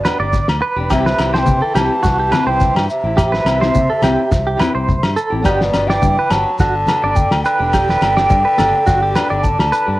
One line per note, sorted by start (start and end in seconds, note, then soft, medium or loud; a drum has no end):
0.00 0.21 B2 medium
0.00 0.20 D5 medium
0.05 0.20 B3 medium
0.05 0.21 D4 medium
0.05 0.18 G4 medium
0.05 0.19 B4 medium
0.05 snare medium
0.05 low conga medium
0.05 low agogo medium
0.05 shekere medium
0.20 0.44 G1 medium
0.20 0.38 D4 soft
0.20 0.36 G4 soft
0.20 0.47 D5 medium
0.32 kick medium
0.32 snare soft
0.32 high conga medium
0.32 shekere medium
0.48 0.60 D2 medium
0.48 snare medium
0.48 low agogo medium
0.61 0.89 B4 medium
0.61 muted conga soft
0.76 0.88 E1 medium
0.76 0.91 D4 soft
0.76 0.90 G4 soft
0.90 1.15 C2 loud
0.90 1.40 C3 medium
0.90 1.08 E3 medium
0.90 1.08 C4 medium
0.90 1.09 E4 medium
0.90 1.05 G4 medium
0.90 1.36 E5 medium
0.90 muted nylon-string guitar stroke medium
0.90 kick medium
0.90 snare medium
0.90 low agogo medium
0.90 shekere medium
1.06 1.33 B4 medium
1.06 snare medium
1.18 1.43 C2 medium
1.18 1.33 E3 medium
1.18 1.34 C4 medium
1.18 1.33 E4 medium
1.18 1.31 G4 medium
1.18 snare medium
1.18 low agogo medium
1.18 shekere medium
1.32 1.51 C4 soft
1.32 1.50 E4 soft
1.32 1.49 G4 soft
1.32 1.61 C5 medium
1.32 1.40 A5 medium
1.32 snare medium
1.38 1.77 E3 medium
1.38 1.79 G5 loud
1.46 1.60 C3 medium
1.46 kick medium
1.46 high conga medium
1.46 shekere medium
1.62 1.75 A4 medium
1.74 1.88 C2 medium
1.74 1.92 E3 medium
1.74 2.51 E3 medium
1.74 1.93 C4 medium
1.74 1.94 E4 medium
1.74 2.02 G4 medium
1.74 1.94 G4 medium
1.74 2.48 A5 loud
1.74 snare medium
1.74 low agogo medium
1.74 shekere medium
2.03 2.29 C2 medium
2.03 2.18 F#4 medium
2.03 kick medium
2.03 snare medium
2.03 muted conga soft
2.03 shekere medium
2.20 2.32 G4 medium
2.30 2.46 E3 medium
2.30 2.47 C4 medium
2.30 2.46 E4 medium
2.30 2.45 G4 medium
2.30 2.46 B4 medium
2.30 snare medium
2.30 high conga medium
2.30 low agogo medium
2.30 shekere medium
2.46 2.71 C2 medium
2.46 2.65 C4 soft
2.46 2.64 E4 soft
2.46 2.63 G4 soft
2.46 2.74 C5 medium
2.46 2.89 G5 medium
2.51 2.91 E3 medium
2.60 kick medium
2.60 snare soft
2.60 high conga medium
2.60 shekere medium
2.75 2.87 G2 medium
2.75 snare medium
2.75 low agogo medium
2.89 5.14 C3 medium
2.89 5.13 E5 medium
2.89 muted conga soft
2.89 shekere medium
3.04 3.40 A1 medium
3.04 3.22 E4 soft
3.04 3.20 G4 soft
3.17 3.32 G4 medium
3.17 kick medium
3.17 snare medium
3.17 muted conga soft
3.17 low agogo medium
3.17 shekere loud
3.32 3.60 B4 medium
3.32 snare medium
3.45 3.70 C2 medium
3.45 3.60 E3 medium
3.45 3.61 C4 medium
3.45 3.61 E4 medium
3.45 3.59 G4 medium
3.45 snare medium
3.45 muted conga soft
3.45 low agogo medium
3.45 shekere medium
3.60 3.78 C4 soft
3.60 3.78 E4 soft
3.60 3.77 G4 medium
3.60 3.88 C5 medium
3.60 snare medium
3.75 3.88 C3 medium
3.75 kick medium
3.75 high conga medium
3.75 shekere medium
3.90 4.02 A4 medium
4.01 4.16 C2 medium
4.01 4.20 E3 medium
4.01 4.21 C4 medium
4.01 4.21 E4 medium
4.01 4.30 G4 medium
4.01 4.21 G4 medium
4.01 snare medium
4.01 high conga medium
4.01 low agogo medium
4.01 shekere medium
4.31 4.56 C2 medium
4.31 muted clean electric guitar stroke medium
4.31 kick medium
4.31 snare medium
4.31 shekere medium
4.47 4.59 G4 medium
4.57 4.74 E3 medium
4.57 4.74 C4 medium
4.57 4.73 E4 medium
4.57 4.71 G4 medium
4.57 4.74 B4 medium
4.57 snare medium
4.57 low conga medium
4.57 low agogo medium
4.57 shekere medium
4.72 4.99 C2 medium
4.72 4.91 C4 soft
4.72 4.91 E4 soft
4.72 4.90 G4 soft
4.72 5.02 C5 medium
4.89 kick medium
4.89 high conga medium
4.89 shekere medium
5.03 5.15 G2 medium
5.03 snare medium
5.03 low agogo medium
5.16 5.44 A4 medium
5.16 muted conga soft
5.16 shekere medium
5.30 5.43 A1 medium
5.30 5.42 C4 soft
5.30 5.44 E4 soft
5.30 5.44 G4 soft
5.42 5.70 G1 loud
5.42 5.62 B3 medium
5.42 5.62 D4 medium
5.42 5.63 G4 medium
5.42 5.60 G4 medium
5.42 5.89 D5 medium
5.42 kick medium
5.42 snare medium
5.42 low agogo medium
5.42 shekere medium
5.47 5.91 B2 medium
5.61 snare medium
5.71 5.98 G1 medium
5.71 5.88 B3 medium
5.71 5.89 D4 medium
5.71 5.85 G4 medium
5.71 snare medium
5.71 muted conga soft
5.71 low agogo medium
5.71 shekere medium
5.87 6.33 E3 medium
5.87 6.06 D4 soft
5.87 6.04 G4 medium
5.87 6.16 D5 medium
5.87 6.32 G5 loud
5.87 snare medium
6.02 6.15 G2 medium
6.02 kick medium
6.02 high conga medium
6.02 shekere medium
6.19 6.31 B4 medium
6.29 6.44 G1 medium
6.29 6.59 F#3 medium
6.29 6.48 B3 medium
6.29 6.48 D4 medium
6.29 6.49 G4 medium
6.29 6.59 A5 medium
6.29 snare medium
6.29 low agogo medium
6.29 shekere medium
6.59 6.84 G1 medium
6.59 7.18 D3 medium
6.59 6.74 F#4 medium
6.59 7.17 A5 loud
6.59 kick medium
6.59 snare medium
6.59 muted conga soft
6.59 shekere medium
6.86 7.02 B3 medium
6.86 7.03 D4 medium
6.86 7.01 G4 medium
6.86 muted clean electric guitar stroke medium
6.86 snare medium
6.86 high conga medium
6.86 low agogo medium
6.86 shekere medium
7.02 7.27 G1 medium
7.02 7.20 D4 soft
7.02 7.19 G4 soft
7.02 7.30 D5 medium
7.16 7.45 D3 medium
7.16 7.43 G5 medium
7.16 kick medium
7.16 high conga medium
7.16 shekere loud
7.31 7.43 D2 medium
7.31 snare medium
7.31 low agogo medium
7.44 9.46 D3 medium
7.44 7.72 B4 medium
7.44 9.44 G5 loud
7.44 muted conga soft
7.44 shekere medium
7.59 7.95 E1 medium
7.59 7.77 D4 soft
7.59 7.76 G4 soft
7.72 7.88 G4 medium
7.72 kick medium
7.72 snare medium
7.72 muted conga soft
7.72 low agogo medium
7.72 shekere medium
7.89 8.16 B4 medium
7.89 snare medium
8.01 8.25 G1 medium
8.01 8.17 B3 medium
8.01 8.18 D4 soft
8.01 8.15 G4 medium
8.01 snare medium
8.01 muted conga soft
8.01 low agogo medium
8.01 shekere medium
8.16 8.34 D4 soft
8.16 8.33 G4 medium
8.16 8.44 D5 medium
8.16 snare medium
8.30 8.43 G2 medium
8.30 kick medium
8.30 high conga medium
8.30 shekere medium
8.45 8.57 B4 medium
8.57 8.72 G1 medium
8.57 8.75 B3 medium
8.57 8.76 D4 medium
8.57 8.77 G4 medium
8.57 8.85 A4 medium
8.57 snare medium
8.57 high conga medium
8.57 low agogo medium
8.57 shekere medium
8.86 9.11 G1 medium
8.86 9.01 F#4 medium
8.86 kick medium
8.86 snare medium
8.86 muted conga soft
8.86 shekere medium
9.03 9.15 G4 medium
9.14 9.30 B3 medium
9.14 9.31 D4 medium
9.14 9.30 B4 medium
9.14 snare medium
9.14 low conga medium
9.14 low agogo medium
9.14 shekere medium
9.18 9.29 G4 medium
9.30 9.55 G1 medium
9.30 9.48 D4 soft
9.30 9.46 G4 soft
9.30 9.57 D5 medium
9.43 10.00 D3 medium
9.43 9.99 A5 medium
9.43 kick medium
9.43 high conga medium
9.43 shekere loud
9.59 9.70 D2 medium
9.59 snare medium
9.59 low agogo medium
9.72 9.99 B4 medium
9.72 muted conga soft
9.72 shekere medium
9.86 9.99 G2 medium
9.86 10.00 D4 soft
9.86 10.00 G4 medium